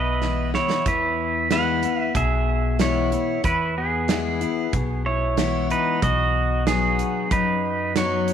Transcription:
Already playing: B1 B2 B4 D#5 E5
0.22 E3 G#3 B3 E4, snare
0.54 E4 C#5, snare
0.70 snare
0.86 E2 E4 B4, kick, closed hi-hat
1.51 E3 G#3 B3 E4 B4 F#5, snare, closed hi-hat
1.82 B3 E4, closed hi-hat
2.02 E5
2.15 B1 B2 G#4 E5, kick, closed hi-hat
2.79 E3 G#3 B3 E4 C#5, snare, closed hi-hat
3.12 B3 E4, closed hi-hat
3.44 E2 E4 B4, kick, closed hi-hat
3.78 B3 G#4
4.08 E3 G#3 B3 E4, snare, closed hi-hat
4.41 B3 E4, closed hi-hat
4.73 B1 B2, kick, closed hi-hat
5.06 E4 C#5
5.37 E3 G#3 B3 E4, snare, closed hi-hat
5.70 D#4 B4, closed hi-hat
6.02 B1 B2 F#4 D#5, kick, closed hi-hat
6.67 F#3 B3 D#4 F#4 G#4, snare, closed hi-hat
6.99 closed hi-hat
7.31 F#2 D#4 B4, kick, closed hi-hat
7.96 F#3 B3 D#4 F#4 C#5, snare, closed hi-hat
8.28 closed hi-hat

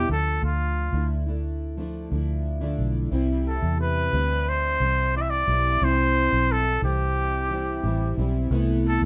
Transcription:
0.09 D2 D3 F3 A3 D4 A4
0.42 D2 F4
0.93 D2 A3 D4 E4
1.26 A3 D4 E4
1.77 F3 A3 D4 E4
2.11 D2 F3 A3 D4 E4
2.61 D3 F3 A3 D4 E4
2.79 B1
3.11 C2 C3 E3 G3 C4 E4
3.48 A4
3.62 E2
3.81 B4
4.12 D2 E3 G3 C4 E4
4.49 C5
4.80 C2 E3 G3 C4 E4
5.14 E3 G3 C4 E4 D5
5.22 E5
5.30 D5
5.47 B1 E3 G3 C4 E4
5.81 C2 E3 G3 C4 E4 C5
6.32 B1
6.52 A4
6.82 C2 E3 G3 C4 E4 G4
7.50 E3 G3 C4 E4
7.83 A1 E3 G3 C4 E4
8.17 B1 E3 G3 C4 E4
8.51 C2 C3 E3 A3 B3 E4
8.87 A4
9.01 E2

